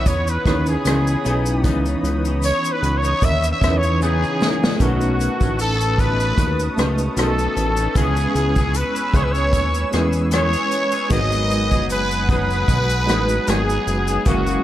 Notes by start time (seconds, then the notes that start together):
Already playing: E3 B3 C#4 D#4 B4 C#5 B5 D#6
0.06 E2 C#5, kick, closed hi-hat, shaker
0.27 B4, shaker
0.45 D#2 C#3 B3 C#4 D#4 E4 B4, kick, cross-stick, closed hi-hat, shaker
0.66 shaker
0.68 G#4, shaker
0.84 C#2 C#3 E3 B3 D#4, cross-stick, closed hi-hat, shaker
1.07 shaker
1.24 B1 C#3 E3 B3 D#4, closed hi-hat, shaker
1.46 shaker
1.64 C#2 C#3 E3 B3 C#4 D#4 B4 C#5, kick, closed hi-hat, shaker
1.86 shaker
2.03 C#2, closed hi-hat, shaker
2.25 E3 B3 D#4, shaker
2.42 C#5, closed hi-hat, shaker
2.64 shaker
2.72 B4
2.82 C#2, closed hi-hat, shaker
2.97 C#5
3.03 B3 D#4, shaker
3.21 D#2, kick, closed hi-hat, shaker
3.23 E5, shaker
3.43 shaker
3.51 E5
3.61 E2 C#3 E3 B3 C#4 D#4 B4, kick, cross-stick, closed hi-hat, shaker
3.77 C#5
3.83 shaker
4.00 C#3 E3 B3 D#4 G#4, shaker
4.23 shaker
4.40 C#3 E3 B3 D#4, snare, shaker
4.64 snare, shaker
4.80 B1 B2 D#3 A3 C#4 D#4 F#4 B4 A5 C#6 D#6, kick, closed hi-hat, shaker
5.01 shaker
5.03 shaker
5.20 closed hi-hat, shaker
5.41 A1 D#3 A3 C#4, kick, shaker
5.59 A4, closed hi-hat, shaker
5.81 shaker
5.98 B2 D#3 A3 C#4 B4, kick, closed hi-hat, shaker
6.20 shaker
6.38 D#2, kick, closed hi-hat, shaker
6.60 shaker
6.77 C#2 B2 D#3 A3 C#4 D#4 B4, cross-stick, closed hi-hat, shaker
6.98 shaker
7.00 shaker
7.16 B1 B2 D#3 A3 C#4 A4, cross-stick, closed hi-hat, shaker
7.39 shaker
7.57 A1, closed hi-hat, shaker
7.77 C#4, shaker
7.79 D#3 A3, shaker
7.95 C#2 C#3 E3 G#3 B3 C#4 E4 G#4 B4 G#5 E6, kick, closed hi-hat, shaker
8.16 shaker
8.19 shaker
8.35 C#2, closed hi-hat, shaker
8.56 C#4 G#4, kick, shaker
8.58 B3, shaker
8.74 B4, closed hi-hat, shaker
8.96 shaker
9.14 C#2 B3 C#4 C#5, kick, closed hi-hat, shaker
9.16 G#4, shaker
9.23 B4
9.32 C#5, shaker
9.36 shaker
9.53 D#2, kick, closed hi-hat, shaker
9.74 shaker
9.91 E2 E3 G#3 B3 C#4 E4 G#4 B4, cross-stick, closed hi-hat, shaker
10.13 shaker
10.16 shaker
10.31 E3 B3 C#4, cross-stick, closed hi-hat, shaker
10.34 G#4 C#5, shaker
10.53 shaker
10.55 shaker
10.71 closed hi-hat, shaker
10.92 C#4 G#4, shaker
10.95 B3, shaker
11.09 G#1 G#2 D#3 F#3 G#3 B3 D#4 F#4 F#5 D#6, kick, closed hi-hat, shaker
11.12 G#4 B4 D#5, shaker
11.32 shaker
11.34 shaker
11.51 closed hi-hat, shaker
11.71 F#1 B3 D#4 G#4, kick, shaker
11.73 F#3, shaker
11.90 B4, closed hi-hat, shaker
12.11 shaker
12.29 F#3 B3 B4, kick, closed hi-hat, shaker
12.31 D#4 G#4, shaker
12.50 shaker
12.68 B1, kick, closed hi-hat, shaker
12.90 shaker
13.06 A1 F#3 G#3 B3 D#4 F#4 B4, cross-stick, closed hi-hat, shaker
13.10 G#4
13.29 shaker
13.31 shaker
13.47 G#1 F#3 B3 D#4 G#4, closed hi-hat, shaker
13.49 G#4, cross-stick, shaker
13.70 shaker
13.71 shaker
13.87 F#1, closed hi-hat, shaker
14.08 B3 D#4 G#4, shaker
14.10 F#3, shaker
14.25 F#1 F#2 C#3 E3 G#3 A#3 C#4 E4 F#4 G#4 A#4 F#5 E6, kick, closed hi-hat, shaker
14.28 A#4, shaker
14.47 shaker
14.50 shaker